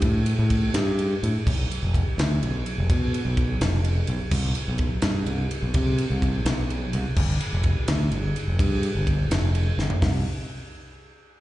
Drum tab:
CC |------------|x-----------|------------|x-----------|
RD |x-x-x-x-x-x-|--x-x-x-x-x-|x-x-x-x-x-x-|--x-x-x-x-x-|
HH |------------|------------|------------|------------|
SD |------o-----|------o-----|------o-----|------o-----|
FT |------------|------------|------------|------------|
BD |o---o-------|o---o-------|o---o-------|o---o-------|

CC |------------|x-----------|------------|------------|
RD |x-x-x-x-x-x-|--x-x-x-x-x-|x-x-x-x-x---|------------|
HH |------------|------------|------------|o-----------|
SD |------o-----|------o-----|------o---o-|o-----------|
FT |------------|------------|-----------o|------------|
BD |o---o-------|o---o-------|o---o-------|o-----------|